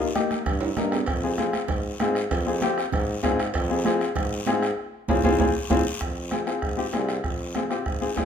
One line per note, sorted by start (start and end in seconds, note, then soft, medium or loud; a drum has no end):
0.00 0.13 D#2 loud
0.00 0.06 D#4 medium
0.00 0.05 F4 medium
0.15 0.37 A#3 medium
0.15 0.37 D#4 medium
0.15 0.37 G4 medium
0.15 bombo rim medium
0.15 high conga medium
0.15 short guiro medium
0.31 bombo rim medium
0.31 high conga medium
0.31 short guiro medium
0.46 0.71 G2 medium
0.46 bombo low medium
0.46 bombo rim medium
0.46 cowbell medium
0.46 low conga medium
0.46 long guiro medium
0.61 high timbale medium
0.77 1.02 G2 loud
0.77 0.93 A#3 medium
0.77 0.93 D#4 medium
0.77 0.94 A#4 medium
0.77 bombo rim medium
0.77 high conga medium
0.77 low conga medium
0.77 short guiro medium
0.92 bombo rim medium
0.92 low timbale medium
0.92 short guiro medium
1.06 1.57 F2 loud
1.06 bombo low medium
1.06 bombo rim medium
1.06 cowbell medium
1.06 long guiro medium
1.23 1.29 C4 medium
1.23 1.29 F4 medium
1.23 1.29 G#4 medium
1.38 1.60 C4 medium
1.38 1.60 F4 medium
1.38 1.60 G#4 medium
1.38 bombo rim medium
1.38 high conga medium
1.38 short guiro medium
1.53 bombo rim medium
1.53 high conga medium
1.53 short guiro medium
1.68 1.94 G#2 medium
1.68 bombo low medium
1.68 bombo rim medium
1.68 cowbell medium
1.68 low conga medium
1.68 long guiro medium
2.00 2.25 G#2 loud
2.00 2.17 C4 medium
2.00 2.17 F4 medium
2.00 2.17 G#4 medium
2.00 bombo rim medium
2.00 high conga medium
2.00 low timbale medium
2.00 short guiro medium
2.15 bombo rim medium
2.15 short guiro medium
2.31 2.81 F2 loud
2.31 bombo low medium
2.31 bombo rim medium
2.31 cowbell loud
2.31 low conga medium
2.31 long guiro medium
2.46 2.52 C4 medium
2.46 2.52 F4 medium
2.46 2.52 G#4 medium
2.61 2.83 C4 medium
2.61 2.84 F4 medium
2.61 2.84 G4 medium
2.61 bombo rim medium
2.61 high conga medium
2.61 short guiro medium
2.78 bombo rim medium
2.78 short guiro medium
2.92 3.18 G#2 loud
2.92 bombo low medium
2.92 bombo rim medium
2.92 cowbell medium
2.92 low conga medium
2.92 long guiro medium
3.23 3.49 G#2 loud
3.23 3.39 C4 medium
3.23 3.40 F4 medium
3.23 3.40 G#4 medium
3.23 bombo low medium
3.23 bombo rim medium
3.23 high conga medium
3.23 low timbale medium
3.23 short guiro medium
3.39 bombo rim medium
3.39 short guiro medium
3.54 4.04 F2 loud
3.54 bombo low medium
3.54 bombo rim medium
3.54 cowbell loud
3.54 long guiro medium
3.70 3.75 C4 medium
3.70 3.75 F4 medium
3.70 3.76 G#4 medium
3.85 4.07 C4 medium
3.85 4.07 F4 medium
3.85 4.07 G#4 medium
3.85 bombo rim medium
3.85 high conga medium
3.85 short guiro medium
4.01 bombo rim medium
4.01 short guiro medium
4.15 4.41 G#2 loud
4.15 bombo low medium
4.15 bombo rim medium
4.15 cowbell medium
4.15 low conga medium
4.15 long guiro medium
4.46 4.72 G#2 loud
4.46 4.63 C4 medium
4.46 4.63 F4 medium
4.46 4.63 G#4 loud
4.46 bombo rim medium
4.46 high conga medium
4.46 low timbale medium
4.46 short guiro medium
4.63 bombo rim medium
4.63 short guiro medium
5.08 5.20 F2 medium
5.08 5.19 C4 medium
5.08 5.19 F4 medium
5.08 5.19 G#4 medium
5.08 bombo low loud
5.08 high conga loud
5.08 high timbale loud
5.08 long guiro loud
5.23 5.36 F2 medium
5.23 5.34 C4 loud
5.23 5.34 F4 loud
5.23 5.34 G#4 loud
5.23 bombo low medium
5.23 high conga loud
5.23 high timbale loud
5.23 long guiro loud
5.38 5.51 F2 medium
5.38 5.49 C4 medium
5.38 5.49 F4 medium
5.38 5.50 G#4 medium
5.38 bombo low loud
5.38 high conga loud
5.38 high timbale loud
5.38 long guiro medium
5.70 5.82 F2 loud
5.70 5.80 C4 loud
5.70 5.80 F4 loud
5.70 5.80 G#4 medium
5.70 bombo low medium
5.70 high conga medium
5.70 high timbale loud
5.70 long guiro loud
6.01 6.51 F2 medium
6.01 bombo low medium
6.01 bombo rim medium
6.01 long guiro medium
6.31 6.37 C4 medium
6.31 6.37 F4 medium
6.31 6.38 G#4 medium
6.31 bombo rim medium
6.31 high conga medium
6.31 short guiro medium
6.46 6.58 C4 medium
6.46 6.58 F4 medium
6.46 6.58 G#4 medium
6.46 bombo rim medium
6.46 short guiro medium
6.62 6.87 G#2 medium
6.62 bombo low medium
6.62 bombo rim medium
6.62 long guiro medium
6.77 6.83 C4 medium
6.77 6.83 F4 medium
6.77 6.84 G4 medium
6.93 7.19 C2 loud
6.93 7.15 C4 medium
6.93 7.15 F4 medium
6.93 7.15 G#4 medium
6.93 bombo rim medium
6.93 high conga medium
6.93 short guiro medium
7.09 bombo rim medium
7.09 short guiro medium
7.24 7.74 F2 medium
7.24 bombo low medium
7.24 bombo rim medium
7.24 long guiro medium
7.55 7.61 C4 medium
7.55 7.61 F4 medium
7.55 7.61 G#4 medium
7.55 bombo rim medium
7.55 high conga medium
7.55 short guiro medium
7.70 7.81 C4 medium
7.70 7.81 F4 medium
7.70 7.82 G4 medium
7.70 bombo rim medium
7.70 short guiro medium
7.86 8.11 G#2 medium
7.86 bombo low medium
7.86 bombo rim medium
7.86 long guiro medium
8.01 8.07 C4 medium
8.01 8.07 F4 medium
8.01 8.07 G#4 medium
8.16 8.25 C2 loud
8.16 8.25 C4 medium
8.16 8.25 F4 medium
8.16 8.25 G#4 medium
8.16 bombo low medium
8.16 bombo rim medium
8.16 high conga medium
8.16 short guiro medium